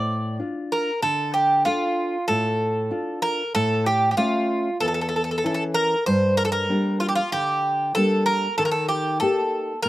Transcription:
0.00 0.38 A2 medium
0.00 0.37 D5 loud
0.39 0.90 D4 soft
0.39 0.90 F4 soft
0.72 1.01 A#4 medium
1.02 1.64 D3 medium
1.02 1.32 A4 medium
1.34 1.63 G4 medium
1.65 2.16 D4 medium
1.65 2.25 F4 medium
1.65 2.16 F4 soft
1.65 2.17 A4 medium
2.28 2.90 A2 medium
2.28 3.19 A4 loud
2.91 3.42 D4 medium
2.91 3.42 F4 soft
3.22 3.52 A#4 loud
3.55 4.16 A2 medium
3.55 3.84 A4 loud
3.86 4.10 G4 medium
4.11 4.17 G4 medium
4.17 4.68 A3 medium
4.17 4.68 C#4 soft
4.17 4.76 F4 medium
4.17 4.69 E5 medium
4.80 5.42 E2 medium
4.80 4.87 A4 loud
4.88 4.93 A4 medium
4.94 5.00 A4 medium
5.01 5.07 A4 medium
5.09 5.15 A4 medium
5.16 5.23 A4 medium
5.24 5.30 A4 medium
5.31 5.37 A4 medium
5.38 5.45 A4 medium
5.44 5.94 E3 medium
5.44 5.94 C#4 soft
5.44 5.95 E4 medium
5.44 5.53 A4 medium
5.54 5.63 A4 medium
5.74 6.06 A#4 loud
6.06 6.68 G2 medium
6.06 6.36 C5 loud
6.37 6.44 A#4 loud
6.45 6.51 A4 medium
6.52 6.98 A#4 loud
6.69 7.20 G3 medium
6.69 7.20 A#3 soft
6.69 7.20 D4 medium
7.00 7.07 F4 loud
7.09 7.15 G4 medium
7.15 7.31 F4 loud
7.32 7.94 D3 medium
7.32 7.91 G4 loud
7.95 8.46 G3 medium
7.95 8.46 A#3 soft
7.95 8.47 D4 medium
7.95 8.25 A4 loud
8.26 8.57 A#4 loud
8.58 9.20 D#3 medium
8.58 8.64 A4 loud
8.65 8.71 A#4 medium
8.72 8.88 A4 loud
8.88 9.19 G4 medium
9.20 9.72 A#3 medium
9.20 9.72 D#4 soft
9.20 9.72 G4 medium
9.20 9.79 A4 loud
9.83 9.89 A#2 medium
9.83 9.89 A#4 loud

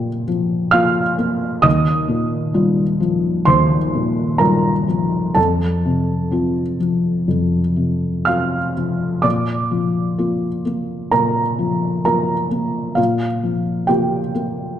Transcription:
0.00 1.61 A#2 soft
0.00 0.28 F3 soft
0.00 0.73 A#3 soft
0.00 0.74 F4 soft
0.00 0.24 G4 soft
0.00 0.27 G5 medium
0.28 1.01 F3 soft
0.71 1.15 A#3 soft
0.71 1.15 F4 soft
0.71 1.60 F5 medium
0.71 1.64 F6 medium
1.18 1.64 A#3 soft
1.62 3.44 D#2 soft
1.62 3.44 D#5 medium
1.62 3.47 D#6 medium
2.08 2.83 A#2 soft
2.54 2.97 G3 soft
2.54 2.98 F4 soft
3.00 3.76 F3 soft
3.45 5.32 D#2 soft
3.45 4.37 C5 medium
3.45 4.40 C6 medium
3.95 4.70 A#2 soft
4.38 4.84 G3 soft
4.38 4.85 F4 soft
4.38 5.32 A#4 soft
4.38 5.35 A#5 medium
4.88 5.37 F3 soft
5.35 7.25 F2 soft
5.35 8.24 A4 soft
5.35 8.28 A5 medium
5.85 6.62 C3 soft
6.31 6.76 C4 soft
6.31 6.77 F4 soft
6.80 7.59 F3 soft
7.28 9.20 F2 soft
7.76 8.57 C3 soft
8.25 8.73 C4 soft
8.25 8.73 F4 soft
8.25 9.20 F5 soft
8.25 9.23 F6 medium
8.77 9.25 F3 soft
9.22 11.08 A#2 soft
9.22 11.08 D5 soft
9.22 11.12 D6 medium
9.71 10.47 F3 soft
10.18 10.62 A#3 soft
10.18 10.62 F4 soft
10.65 11.41 A#3 soft
11.11 12.94 A#2 soft
11.11 12.01 A#4 soft
11.11 12.04 A#5 medium
11.59 12.33 F3 soft
12.05 12.48 A#3 soft
12.05 12.48 F4 soft
12.05 12.94 A#4 soft
12.05 12.98 A#5 medium
12.51 13.25 A#3 soft
12.95 14.78 A#2 soft
12.95 13.86 F4 soft
12.95 13.89 F5 medium
13.43 14.18 F3 soft
13.87 14.32 A#3 soft
13.87 14.32 F4 soft
13.87 14.79 G4 soft
13.87 14.79 G5 medium
14.35 14.79 A#3 soft

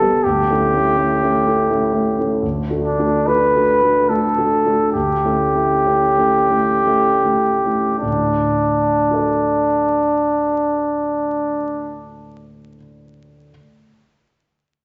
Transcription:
0.00 0.26 G3 soft
0.00 0.27 B3 soft
0.00 0.02 G4 soft
0.00 0.23 G4 soft
0.00 0.25 A4 medium
0.24 0.48 D2 soft
0.24 2.43 G4 medium
0.50 0.71 A3 soft
0.50 0.71 C#4 soft
0.50 0.71 E4 soft
0.74 0.95 A3 soft
0.74 0.95 C#4 soft
0.74 0.95 E4 soft
0.97 1.18 A3 soft
0.97 1.19 C#4 soft
0.97 1.19 E4 soft
1.22 1.44 A3 soft
1.22 1.44 C#4 soft
1.22 1.44 E4 soft
1.47 1.68 A3 soft
1.47 1.68 C#4 soft
1.47 1.68 E4 soft
1.70 1.92 A3 soft
1.70 1.92 C#4 soft
1.70 1.92 E4 soft
1.93 2.15 A3 soft
1.93 2.15 C#4 soft
1.93 2.16 E4 soft
2.18 2.41 A3 soft
2.18 2.41 C#4 soft
2.18 2.41 E4 soft
2.42 2.69 D2 soft
2.70 2.96 A3 soft
2.70 2.96 D4 soft
2.70 2.96 F#4 soft
2.82 3.29 D4 soft
2.98 3.24 A3 soft
2.98 3.24 D4 soft
2.98 3.25 F#4 soft
3.27 3.52 A3 soft
3.27 3.52 D4 soft
3.27 3.52 F#4 soft
3.27 4.11 B4 medium
3.56 3.80 A3 soft
3.56 3.80 D4 soft
3.56 3.80 F#4 soft
3.83 4.07 A3 soft
3.83 4.07 D4 soft
3.83 4.07 F#4 soft
4.09 4.34 A3 soft
4.09 4.35 D4 soft
4.09 4.35 F#4 soft
4.09 4.92 A4 soft
4.38 4.63 A3 soft
4.38 4.63 D4 soft
4.38 4.63 F#4 soft
4.66 4.91 A3 soft
4.66 4.92 D4 soft
4.66 4.92 F#4 soft
4.93 5.23 D2 soft
4.93 7.97 G4 soft
5.25 5.51 A3 soft
5.25 5.52 C#4 soft
5.25 5.52 E4 soft
5.55 5.82 A3 soft
5.55 5.83 C#4 soft
5.55 5.82 E4 soft
5.86 6.14 A3 soft
5.86 6.14 C#4 soft
5.86 6.15 E4 soft
6.17 6.47 A3 soft
6.17 6.47 C#4 soft
6.17 6.48 E4 soft
6.50 6.81 A3 soft
6.50 6.82 C#4 soft
6.50 6.82 E4 soft
6.86 7.20 A3 soft
6.86 7.20 C#4 soft
6.86 7.21 E4 soft
7.24 7.60 A3 soft
7.24 7.60 C#4 soft
7.24 7.60 E4 soft
7.65 7.99 A3 soft
7.65 7.98 C#4 soft
7.65 7.99 E4 soft
7.99 12.75 D2 soft
7.99 12.75 A2 soft
7.99 12.03 D4 soft
9.11 12.75 F#4 soft
9.11 12.76 A4 soft
9.11 12.77 D5 soft

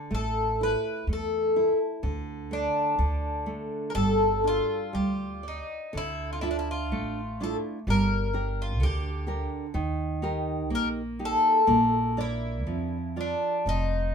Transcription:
0.00 0.18 D4 medium
0.11 0.74 A1 medium
0.11 1.08 A3 medium
0.11 0.63 A4 medium
0.61 1.07 E4 soft
0.61 1.06 B4 medium
1.07 1.69 E2 medium
1.07 1.54 A3 soft
1.13 1.78 A4 medium
1.56 2.02 E4 soft
2.03 2.65 D2 medium
2.03 2.96 D3 medium
2.51 2.97 A3 soft
2.51 3.93 D4 medium
2.98 3.61 D2 medium
2.98 3.92 D3 medium
3.46 3.93 A3 soft
3.90 3.94 A#4 medium
3.95 4.59 G1 medium
3.95 4.92 G3 medium
3.95 4.94 A4 loud
4.44 4.92 D4 soft
4.44 5.47 F4 medium
4.93 5.59 D2 medium
4.93 5.42 G3 soft
4.93 5.65 G4 medium
5.43 5.92 D5 soft
5.48 5.92 D#4 medium
5.93 6.93 D2 medium
5.93 6.42 D3 medium
5.97 6.32 E4 medium
6.33 6.41 F4 medium
6.41 7.20 D4 soft
6.41 6.50 E4 medium
6.41 7.21 F4 soft
6.41 7.20 E5 soft
6.51 6.58 D4 medium
6.59 6.68 E4 medium
6.71 7.43 F4 medium
6.92 7.54 A1 medium
6.92 7.84 A3 medium
7.40 7.78 D4 soft
7.40 7.78 E4 soft
7.40 7.78 F4 soft
7.40 7.56 A4 medium
7.87 8.81 G1 medium
7.87 8.33 G3 medium
7.87 8.61 A#4 medium
8.33 9.09 D4 soft
8.33 9.09 G4 soft
8.33 9.09 A#4 soft
8.62 8.83 F4 medium
8.80 9.42 D2 medium
8.80 9.72 D3 medium
8.80 9.49 G4 medium
9.27 9.66 D4 soft
9.27 9.65 G4 soft
9.27 9.66 A#4 soft
9.74 10.71 D#2 medium
9.74 10.68 D#3 medium
10.22 11.00 D#4 medium
10.22 11.01 G4 soft
10.22 11.01 A#4 medium
10.70 11.34 A#1 medium
10.70 11.65 A#3 medium
10.75 10.88 A#4 loud
11.19 11.58 D#4 soft
11.19 11.59 G4 soft
11.25 12.23 A4 medium
11.67 12.67 A#1 medium
11.67 12.63 A#3 medium
12.17 12.96 D4 soft
12.17 13.20 E4 medium
12.17 12.96 A#4 soft
12.17 12.97 D5 medium
12.67 13.31 F2 medium
12.67 13.63 F3 soft
13.16 13.56 F4 soft
13.16 13.56 A#4 soft
13.16 13.56 D5 soft
13.21 13.68 D4 medium
13.66 14.15 F1 medium
13.66 14.15 F3 medium
13.66 14.15 D#4 medium

